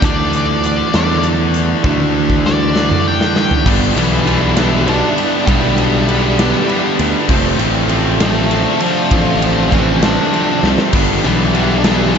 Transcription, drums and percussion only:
0.02 kick loud
0.02 closed hi-hat loud
0.33 closed hi-hat medium
0.64 closed hi-hat medium
0.94 snare loud
0.94 closed hi-hat medium
1.23 closed hi-hat medium
1.54 closed hi-hat medium
1.84 kick loud
2.00 high tom medium
2.30 kick medium
2.46 snare medium
2.76 snare medium
2.91 mid tom medium
3.21 snare medium
3.36 snare loud
3.51 floor tom medium
3.66 kick loud
3.66 crash loud
3.98 ride medium
4.27 ride medium
4.57 snare loud
4.57 ride loud
4.88 ride medium
5.18 ride medium
5.47 kick loud
5.47 ride loud
5.78 ride medium
6.08 ride medium
6.39 snare loud
6.39 ride loud
6.69 ride medium
6.99 ride medium
7.29 kick loud
7.29 crash loud
7.59 ride medium
7.89 ride medium
8.20 snare loud
8.20 ride loud
8.51 ride medium
8.80 ride medium
9.11 kick loud
9.11 ride loud
9.42 ride medium
9.72 kick medium
9.72 ride medium
10.02 snare loud
10.02 ride loud
10.34 ride medium
10.64 snare medium
10.78 snare loud
10.93 kick loud
10.93 crash loud
10.93 splash medium
11.24 ride medium
11.54 ride medium
11.84 snare loud
11.84 ride loud
12.15 ride medium

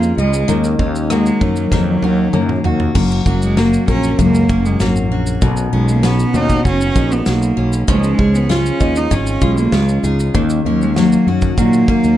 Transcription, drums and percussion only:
0.03 shaker soft
0.18 shaker medium
0.34 shaker medium
0.49 shaker medium
0.64 cross-stick soft
0.64 shaker medium
0.79 kick medium
0.95 shaker medium
1.10 cross-stick medium
1.10 shaker medium
1.26 shaker soft
1.41 kick medium
1.56 shaker medium
1.71 kick medium
1.71 snare medium
2.03 high tom medium
2.33 mid tom medium
2.49 mid tom medium
2.64 floor tom medium
2.80 floor tom medium
2.95 kick loud
2.95 crash loud
3.11 shaker medium
3.26 kick loud
3.26 shaker medium
3.42 shaker medium
3.57 snare medium
3.57 shaker medium
3.73 shaker medium
3.88 kick medium
3.88 shaker soft
4.03 shaker soft
4.19 kick medium
4.19 shaker medium
4.35 shaker medium
4.49 kick loud
4.49 shaker medium
4.66 shaker soft
4.80 snare loud
4.80 shaker medium
4.96 shaker soft
5.27 shaker medium
5.42 kick loud
5.42 shaker medium
5.57 shaker medium
5.88 shaker medium
6.03 snare medium
6.03 shaker medium
6.19 shaker medium
6.34 shaker soft
6.50 kick medium
6.50 shaker soft
6.65 kick medium
6.65 shaker medium
6.81 shaker medium
6.96 kick loud
6.96 shaker soft
7.12 shaker soft
7.26 snare loud
7.26 shaker medium
7.42 shaker soft
7.73 shaker medium
7.88 kick loud
7.88 shaker medium
8.03 shaker medium
8.19 kick medium
8.35 shaker soft
8.50 snare medium
8.50 shaker medium
8.66 shaker soft
8.80 kick medium
8.80 shaker soft
8.96 shaker soft
9.11 kick medium
9.11 shaker medium
9.27 shaker medium
9.41 kick loud
9.41 shaker soft
9.58 shaker soft
9.72 snare loud
9.72 shaker medium
9.89 shaker soft
10.04 shaker medium
10.20 shaker medium
10.35 kick loud
10.35 shaker medium
10.50 shaker medium
10.82 shaker soft
10.96 snare loud
10.96 shaker medium
11.12 shaker medium
11.42 kick medium
11.42 shaker soft
11.58 kick medium
11.58 shaker medium
11.73 shaker medium
11.88 kick loud
12.04 shaker soft

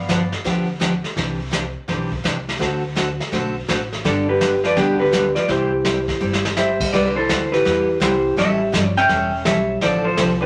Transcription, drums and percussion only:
0.09 kick soft
0.09 snare medium
0.09 hi-hat pedal medium
0.32 snare soft
0.45 brush sweep soft
0.45 kick soft
0.45 snare soft
0.81 kick soft
0.81 snare medium
0.81 hi-hat pedal medium
1.04 snare soft
1.17 brush sweep soft
1.17 kick soft
1.17 snare soft
1.53 kick soft
1.53 snare medium
1.53 hi-hat pedal medium
1.89 brush sweep soft
1.89 kick soft
1.89 snare soft
2.12 kick soft
2.25 kick soft
2.25 snare medium
2.25 hi-hat pedal medium
2.49 snare soft
2.61 brush sweep medium
2.61 kick soft
2.61 snare soft
2.96 kick soft
2.96 snare medium
2.96 hi-hat pedal medium
3.20 snare soft
3.33 brush sweep medium
3.33 kick soft
3.33 snare soft
3.69 kick soft
3.69 snare medium
3.69 hi-hat pedal medium
3.93 snare soft
4.05 brush sweep soft
4.05 kick soft
4.05 snare soft
4.41 kick soft
4.41 snare medium
4.41 hi-hat pedal medium
4.64 snare soft
4.76 brush sweep soft
4.76 kick soft
4.76 snare soft
5.13 kick soft
5.13 snare medium
5.13 hi-hat pedal medium
5.36 snare soft
5.49 brush sweep soft
5.49 kick soft
5.49 snare soft
5.85 kick soft
5.85 snare medium
5.85 hi-hat pedal medium
6.08 kick medium
6.08 snare soft
6.33 snare medium
6.45 snare medium
6.57 snare medium
6.57 hi-hat pedal medium
6.80 kick medium
6.80 crash medium
6.93 brush sweep soft
6.93 kick soft
6.93 snare soft
7.29 kick soft
7.29 snare medium
7.29 hi-hat pedal medium
7.53 snare soft
7.65 brush sweep medium
7.65 kick soft
7.65 snare soft
8.01 kick soft
8.01 snare medium
8.01 hi-hat pedal medium
8.38 brush sweep soft
8.38 kick soft
8.38 snare medium
8.73 kick soft
8.73 snare medium
8.73 hi-hat pedal medium
8.97 snare soft
9.09 brush sweep soft
9.09 kick soft
9.09 snare medium
9.45 kick soft
9.45 snare medium
9.45 hi-hat pedal medium
9.81 brush sweep medium
9.81 kick soft
9.81 snare medium
10.17 kick soft
10.17 snare medium
10.17 hi-hat pedal medium

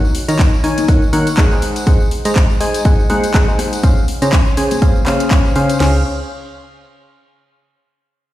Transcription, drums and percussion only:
0.05 tambourine soft
0.15 open hi-hat loud
0.28 closed hi-hat medium
0.28 tambourine medium
0.39 kick loud
0.39 clap loud
0.39 closed hi-hat medium
0.39 tambourine medium
0.54 tambourine soft
0.64 open hi-hat loud
0.78 closed hi-hat medium
0.78 tambourine medium
0.78 high conga medium
0.88 kick loud
0.88 closed hi-hat medium
0.88 tambourine medium
1.02 tambourine soft
1.13 open hi-hat loud
1.13 high conga medium
1.27 closed hi-hat medium
1.27 tambourine medium
1.37 kick loud
1.37 clap loud
1.37 open hi-hat medium
1.37 tambourine medium
1.51 tambourine soft
1.62 open hi-hat loud
1.76 closed hi-hat medium
1.76 tambourine medium
1.87 kick loud
1.87 closed hi-hat medium
1.87 tambourine medium
2.00 tambourine soft
2.11 open hi-hat loud
2.25 closed hi-hat medium
2.25 tambourine medium
2.36 kick loud
2.36 clap loud
2.36 closed hi-hat medium
2.36 tambourine medium
2.50 tambourine soft
2.61 open hi-hat loud
2.74 closed hi-hat medium
2.74 tambourine medium
2.85 kick loud
2.85 closed hi-hat medium
2.85 tambourine medium
3.00 tambourine soft
3.10 open hi-hat loud
3.10 high conga medium
3.23 closed hi-hat medium
3.23 tambourine medium
3.34 kick loud
3.34 clap loud
3.34 closed hi-hat medium
3.34 tambourine medium
3.49 tambourine soft
3.59 cross-stick medium
3.59 open hi-hat loud
3.59 high conga medium
3.73 closed hi-hat medium
3.73 tambourine medium
3.83 kick loud
3.83 closed hi-hat medium
3.83 tambourine medium
3.97 tambourine soft
4.08 open hi-hat loud
4.22 closed hi-hat medium
4.22 tambourine medium
4.33 kick loud
4.33 clap loud
4.33 closed hi-hat medium
4.33 tambourine medium
4.45 tambourine soft
4.57 open hi-hat loud
4.71 closed hi-hat medium
4.71 tambourine medium
4.71 high conga medium
4.82 kick loud
4.82 closed hi-hat medium
4.82 tambourine medium
4.96 tambourine soft
5.06 cross-stick medium
5.06 clap medium
5.06 open hi-hat loud
5.06 high conga medium
5.20 closed hi-hat medium
5.20 tambourine medium
5.31 kick loud
5.31 clap loud
5.31 open hi-hat medium
5.31 tambourine medium
5.45 tambourine soft
5.56 open hi-hat loud
5.70 closed hi-hat medium
5.70 tambourine medium
5.80 snare loud
5.80 crash medium

